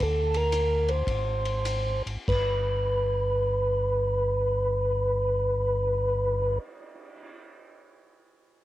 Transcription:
0.00 1.03 D2 medium
0.00 0.37 A4 medium
0.00 kick soft
0.00 ride medium
0.34 0.91 A#4 medium
0.34 ride soft
0.52 hi-hat pedal soft
0.52 ride medium
0.89 2.03 C5 medium
0.89 ride soft
1.07 2.02 G#1 medium
1.07 kick soft
1.07 ride medium
1.45 ride soft
1.65 hi-hat pedal soft
1.65 ride medium
2.06 2.17 G#1 soft
2.06 ride soft
2.28 6.58 G1 medium
2.28 6.58 B4 medium
2.28 kick soft
2.28 crash soft
2.72 cymbal swell soft

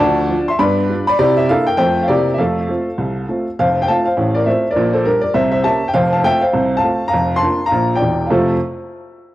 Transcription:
0.00 0.26 D2 loud
0.00 0.18 F3 medium
0.00 0.46 D5 medium
0.00 0.49 A5 loud
0.29 0.46 F3 medium
0.29 0.47 D4 medium
0.29 0.47 F4 medium
0.48 0.60 E5 medium
0.48 0.60 C6 medium
0.59 0.85 G2 loud
0.59 0.78 B3 medium
0.59 1.05 D5 medium
0.59 1.06 B5 loud
0.90 1.06 G3 soft
0.90 1.07 D4 medium
0.90 1.07 F4 medium
1.07 1.18 D5 medium
1.07 1.20 B5 loud
1.19 1.45 C3 medium
1.19 1.38 E4 medium
1.19 1.37 G4 medium
1.19 1.38 D5 loud
1.37 1.49 G4 medium
1.37 1.49 E5 medium
1.49 1.66 A#3 medium
1.49 1.67 D4 soft
1.49 1.66 E4 soft
1.49 1.67 A4 medium
1.49 1.68 F5 loud
1.67 1.79 A#4 medium
1.67 1.76 G5 medium
1.77 2.04 F2 medium
1.77 1.96 A3 medium
1.77 1.95 C4 soft
1.77 1.95 F4 soft
1.77 2.01 C5 medium
1.77 2.02 G5 medium
2.03 2.09 F5 medium
2.08 2.34 C3 medium
2.08 2.25 A#3 soft
2.08 2.25 C4 soft
2.08 2.26 E4 soft
2.08 2.32 G4 medium
2.08 2.32 D5 medium
2.34 2.39 E5 medium
2.38 2.64 F2 medium
2.38 2.56 A3 soft
2.38 3.43 A4 medium
2.38 3.46 F5 medium
2.69 2.85 A3 soft
2.69 2.85 C4 soft
2.69 2.86 F4 soft
2.98 3.23 C2 medium
3.29 3.45 A3 soft
3.29 3.45 C4 soft
3.29 3.45 F4 soft
3.59 3.84 F1 medium
3.59 3.84 F2 medium
3.59 3.81 C5 medium
3.59 3.82 F5 medium
3.82 3.87 G5 medium
3.88 4.04 A3 soft
3.88 4.05 C4 soft
3.88 4.05 F4 soft
3.88 4.04 F5 medium
3.88 4.06 A5 medium
4.05 4.34 C5 medium
4.05 4.35 F5 medium
4.17 4.42 A1 medium
4.17 4.42 A2 medium
4.34 4.46 A#4 medium
4.34 4.46 D5 medium
4.46 4.63 A3 soft
4.46 4.63 C4 soft
4.46 4.63 F4 soft
4.46 4.69 C5 medium
4.46 4.70 E5 medium
4.71 4.94 A#4 medium
4.71 4.95 D5 medium
4.76 5.01 A#1 medium
4.76 5.02 A#2 medium
4.93 5.05 A4 medium
4.93 5.05 C5 medium
5.05 5.22 G3 soft
5.05 5.23 D4 soft
5.05 5.23 G4 medium
5.05 5.22 A#4 medium
5.21 5.34 A#4 medium
5.21 5.34 D5 medium
5.34 5.60 C2 medium
5.34 5.60 C3 medium
5.34 5.51 C5 medium
5.34 5.50 E5 medium
5.52 5.64 C5 medium
5.52 5.63 E5 medium
5.64 5.81 A#3 soft
5.64 5.81 C#4 soft
5.64 5.81 G4 soft
5.64 5.88 E5 medium
5.64 5.89 A5 loud
5.88 5.95 G5 medium
5.94 6.20 F1 medium
5.94 6.20 F2 medium
5.94 6.12 C5 medium
5.94 6.12 F5 loud
6.13 6.24 F5 medium
6.13 6.25 A5 medium
6.24 6.41 A3 medium
6.24 6.41 C4 soft
6.24 6.42 F4 medium
6.24 6.42 E5 medium
6.24 6.43 G5 loud
6.41 6.76 C5 medium
6.41 6.77 F5 medium
6.53 6.80 C2 medium
6.53 6.79 C3 medium
6.77 7.06 F5 medium
6.77 7.08 A5 medium
6.84 7.00 A3 soft
6.84 7.00 C4 soft
6.84 7.01 F4 soft
7.08 7.36 F5 medium
7.08 7.38 A#5 medium
7.13 7.39 F1 medium
7.13 7.39 F2 medium
7.36 7.66 A5 medium
7.36 7.67 C6 loud
7.42 7.59 A#3 soft
7.42 7.59 D4 soft
7.42 7.59 F4 soft
7.66 7.95 F5 medium
7.66 7.97 A#5 medium
7.72 7.98 A#1 medium
7.72 7.98 A#2 medium
7.96 8.25 D5 medium
7.96 8.26 G5 medium
8.02 8.26 E1 medium
8.02 8.26 E2 medium
8.27 8.51 F2 medium
8.27 8.51 C3 medium
8.27 8.51 A3 medium
8.27 8.51 C4 medium
8.27 8.30 F5 soft
8.31 8.51 F4 medium
8.31 8.51 A4 medium
8.31 8.51 F5 medium

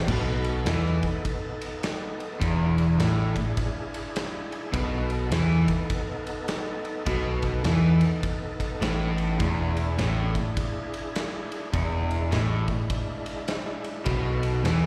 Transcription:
0.00 0.11 G4 medium
0.00 0.13 B4 medium
0.00 0.14 C5 medium
0.06 0.62 B1 loud
0.06 0.66 B2 medium
0.06 2.39 B3 medium
0.06 2.39 D#4 medium
0.06 2.39 A4 medium
0.06 0.16 D5 medium
0.06 kick loud
0.06 crash loud
0.44 ride medium
0.66 1.00 E2 medium
0.66 1.02 E3 loud
0.66 snare loud
0.66 ride medium
0.86 snare soft
1.03 kick medium
1.03 ride medium
1.25 kick loud
1.25 ride medium
1.61 ride medium
1.83 snare loud
1.83 ride medium
2.20 ride soft
2.40 2.96 E1 medium
2.40 2.98 E2 loud
2.40 4.72 D4 medium
2.40 4.72 E4 medium
2.40 4.72 G#4 medium
2.40 kick loud
2.40 ride medium
2.78 ride medium
2.99 3.33 A1 loud
2.99 3.34 A2 loud
2.99 snare loud
2.99 ride medium
3.36 kick medium
3.36 ride medium
3.57 kick loud
3.57 ride medium
3.94 ride medium
4.16 snare loud
4.16 ride medium
4.52 ride medium
4.72 5.28 B1 loud
4.72 5.31 B2 loud
4.72 7.04 B3 medium
4.72 7.04 D#4 medium
4.72 7.04 A4 medium
4.72 kick loud
4.72 ride medium
5.10 ride medium
5.31 5.65 E2 loud
5.31 5.67 E3 loud
5.31 snare loud
5.31 ride medium
5.68 kick medium
5.68 ride medium
5.90 kick loud
5.90 ride medium
6.27 ride medium
6.48 snare loud
6.48 ride medium
6.85 ride soft
7.05 7.61 B1 medium
7.05 7.64 B2 loud
7.05 9.37 B3 medium
7.05 9.37 D#4 medium
7.05 9.38 A4 medium
7.05 kick loud
7.05 ride medium
7.42 kick medium
7.42 ride medium
7.64 7.99 E2 medium
7.64 8.00 E3 loud
7.64 snare loud
7.64 ride medium
8.01 ride medium
8.23 kick loud
8.23 ride medium
8.60 kick medium
8.60 ride medium
8.81 9.36 A1 medium
8.81 9.39 A2 medium
8.81 snare loud
8.81 ride medium
9.18 ride medium
9.38 9.94 E1 medium
9.38 9.97 E2 loud
9.38 11.70 D4 medium
9.38 11.70 E4 medium
9.38 11.70 G#4 medium
9.38 kick loud
9.38 ride medium
9.77 ride medium
9.98 10.33 A1 medium
9.98 10.33 A2 medium
9.98 snare medium
9.98 ride medium
10.35 kick medium
10.35 ride medium
10.57 kick loud
10.57 ride medium
10.94 ride medium
11.15 snare loud
11.15 ride medium
11.52 ride medium
11.72 12.28 E1 medium
11.72 12.31 E2 loud
11.72 14.04 G#3 medium
11.72 14.04 D4 medium
11.72 14.04 E4 medium
11.72 kick loud
11.72 ride medium
12.11 ride medium
12.31 12.66 A1 medium
12.31 12.67 A2 medium
12.31 snare loud
12.31 ride medium
12.68 kick medium
12.68 ride medium
12.90 kick loud
12.90 ride medium
13.26 ride medium
13.48 snare loud
13.48 ride medium
13.84 ride medium
14.06 14.61 B1 medium
14.06 14.64 B2 loud
14.06 14.27 C4 medium
14.06 14.26 E4 medium
14.06 14.26 A#4 medium
14.06 kick loud
14.06 ride medium
14.26 14.86 B3 medium
14.26 14.86 D#4 medium
14.26 14.86 A4 medium
14.43 ride medium
14.64 14.86 E2 loud
14.64 14.86 E3 loud
14.64 snare loud
14.64 ride medium

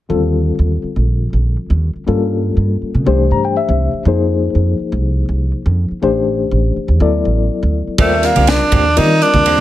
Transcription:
0.09 0.54 D#2 medium
0.09 2.03 D3 medium
0.09 2.03 G3 medium
0.09 2.04 C4 medium
0.09 2.04 F4 soft
0.09 2.04 A4 medium
0.59 0.81 D#2 medium
0.84 muted upright bass stroke soft
0.96 1.29 A#1 medium
1.33 1.55 A#1 medium
1.70 1.92 D#2 medium
1.96 muted upright bass stroke soft
2.07 2.51 G2 medium
2.07 3.04 G3 medium
2.07 3.04 A#3 medium
2.07 3.05 C#4 medium
2.07 3.05 F4 soft
2.07 3.05 A4 medium
2.57 2.79 G2 medium
2.82 muted upright bass stroke soft
2.95 3.05 C#3 medium
3.06 3.28 C2 medium
3.06 4.03 E3 medium
3.06 4.03 A3 medium
3.06 4.03 D4 medium
3.06 4.03 G4 medium
3.06 4.04 C5 medium
3.31 3.53 G2 medium
3.31 3.43 A#5 medium
3.45 3.56 G5 soft
3.57 4.02 E5 medium
3.69 3.90 C2 medium
3.94 muted upright bass stroke soft
4.05 4.49 F2 medium
4.05 5.99 F3 medium
4.05 5.99 A#3 medium
4.05 5.99 D#4 medium
4.05 6.00 G#4 soft
4.05 6.00 C5 medium
4.55 4.76 F2 medium
4.80 muted upright bass stroke soft
4.92 5.24 C2 medium
5.29 5.50 C2 medium
5.66 5.87 F2 medium
5.91 muted upright bass stroke soft
6.02 6.46 A1 medium
6.02 6.98 E3 medium
6.02 6.99 A3 medium
6.02 6.99 D4 medium
6.02 6.99 G4 medium
6.02 6.99 C5 medium
6.51 6.73 A1 medium
6.76 muted upright bass stroke soft
6.88 6.99 E2 medium
7.00 7.22 D2 medium
7.00 7.97 F#3 medium
7.00 7.97 B3 medium
7.00 7.97 E4 medium
7.00 7.98 A4 medium
7.00 7.98 D5 medium
7.25 7.47 A1 medium
7.63 7.84 D2 medium
7.87 muted upright bass stroke soft
7.98 8.31 D#2 medium
7.98 8.87 G3 medium
7.98 8.26 A3 medium
7.98 8.14 A#3 medium
7.98 8.87 C4 medium
7.98 8.14 C4 medium
7.98 8.87 F4 medium
7.98 8.14 G4 medium
7.98 8.87 A#4 medium
7.98 8.87 D5 medium
7.98 kick medium
7.98 ride medium
8.23 8.51 A#3 medium
8.23 muted clean electric guitar stroke soft
8.23 snare soft
8.23 hi-hat pedal medium
8.23 ride medium
8.36 8.58 C2 medium
8.36 8.48 C4 soft
8.36 8.48 G4 soft
8.36 ride medium
8.36 high conga medium
8.47 8.99 D4 medium
8.47 muted clean electric guitar stroke soft
8.47 snare medium
8.47 ride medium
8.62 muted clean electric guitar stroke soft
8.62 muted upright bass stroke soft
8.72 9.00 D#2 medium
8.72 8.86 A#3 medium
8.72 8.86 C4 medium
8.72 8.85 G4 medium
8.72 kick medium
8.72 hi-hat pedal medium
8.72 ride soft
8.72 low conga medium
8.96 9.19 D#3 medium
8.96 9.61 G3 medium
8.96 9.10 A#3 medium
8.96 9.61 C4 medium
8.96 9.10 C4 soft
8.96 9.24 D#4 medium
8.96 9.61 F4 medium
8.96 9.09 G4 medium
8.96 9.61 A#4 medium
8.96 9.61 D5 medium
8.96 ride medium
9.10 muted clean electric guitar stroke soft
9.22 9.61 D4 medium
9.22 hi-hat pedal medium
9.22 ride soft
9.33 9.55 D#2 medium
9.33 muted clean electric guitar stroke soft
9.33 kick medium
9.33 high conga medium
9.46 9.61 A#3 medium
9.46 9.61 C4 medium
9.46 9.61 G4 medium
9.46 ride medium

